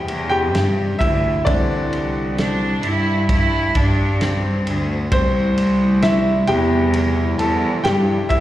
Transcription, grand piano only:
0.00 1.49 C3 soft
0.00 1.49 G3 soft
0.00 1.49 B3 soft
0.00 1.01 E4 medium
0.00 0.28 G4 medium
0.00 0.99 E5 medium
0.00 0.28 G5 loud
0.29 0.97 G4 medium
0.29 1.02 G5 loud
0.99 1.44 E4 medium
0.99 1.47 E5 loud
1.45 2.07 D3 medium
1.45 2.07 E3 medium
1.45 2.08 C4 medium
1.45 2.80 D4 medium
1.45 2.79 D5 medium
5.12 5.99 C4 medium
5.12 5.99 C5 medium
6.03 6.46 E4 medium
6.03 6.50 E5 loud
6.47 8.40 C3 medium
6.47 8.40 G3 medium
6.47 8.40 B3 medium
6.47 7.36 G4 medium
6.47 7.42 G5 medium
7.38 7.82 A4 medium
7.38 7.86 A5 medium
7.84 8.28 G4 medium
7.84 8.31 G5 loud
8.29 8.40 E4 medium
8.29 8.40 E5 loud

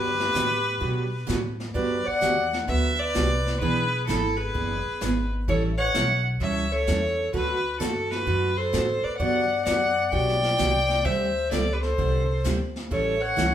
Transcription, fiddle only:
0.00 1.28 B4 loud
1.75 2.08 D5 medium
2.07 2.53 F#5 loud
2.68 3.01 E5 loud
3.00 3.60 D5 loud
3.60 4.04 B4 medium
4.07 4.38 A4 medium
4.37 5.31 B4 medium
5.49 5.62 C#5 medium
5.78 6.22 F#5 loud
6.41 6.74 E5 medium
6.72 7.33 C#5 loud
7.34 7.77 B4 medium
7.79 8.12 A4 medium
8.11 8.58 B4 loud
8.57 9.05 C5 medium
9.03 9.16 D5 medium
9.17 9.61 F#5 loud
9.65 10.08 F#5 loud
10.08 10.14 F#5 medium
10.08 11.07 G5 loud
11.05 11.51 E5 medium
11.51 11.74 D5 loud
11.73 11.82 B4 medium
11.81 12.44 C5 medium
12.91 13.22 C#5 medium
13.21 13.54 F#5 loud

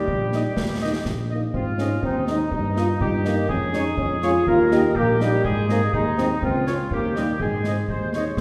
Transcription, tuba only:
0.09 0.45 A#1 soft
0.57 0.98 D#2 soft
1.06 1.46 A#1 soft
1.54 1.95 G#2 soft
2.03 2.44 D#2 soft
2.53 2.93 G2 medium
3.01 3.42 G2 soft
3.50 3.91 F2 soft
3.99 4.40 F2 medium
4.47 4.88 D#2 medium
4.96 5.37 A#1 medium
5.46 5.86 G#2 medium
5.94 6.35 D#2 medium
6.43 6.84 C#2 medium
6.92 7.29 D#2 soft
7.41 7.81 G#2 soft
7.90 8.30 D#2 soft

